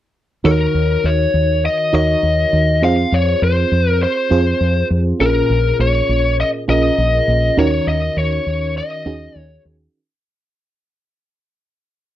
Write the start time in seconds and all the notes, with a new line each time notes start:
0.44 D#2 D#3 D#4 F#4 A#4 C#5
0.74 D#2
1.04 D#2 C#5
1.34 D#2
1.66 D#5
1.93 D#2 D#4 F#4 A#4 C#5 D#5
2.23 D#2
2.53 D#2
2.82 F2 C4 F4 G#4 C5 F5
3.12 F2 C#5
3.42 F2 C5
3.72 F2
3.90 A#4
4.03 C5
4.30 F2 C4 F4 G#4 C5
4.61 F2
4.90 F2
5.19 A#1 A#2 C#4 F4 G#4 A#4
5.50 A#1
5.79 A#1 C#5
6.09 A#1
6.40 D#5
6.68 A#1 C#4 F4 G#4 A#4 D#5
6.98 A#1
7.28 A#1
7.57 D#2 D#3 C#4 D#4 F#4 A#4 C#5
7.87 D#2 D#5
8.17 D#2 C#5
8.47 D#2
8.78 D#5
9.06 D#2 C#4 D#4 F#4 G#4
9.36 D#2 C#5
9.65 D#2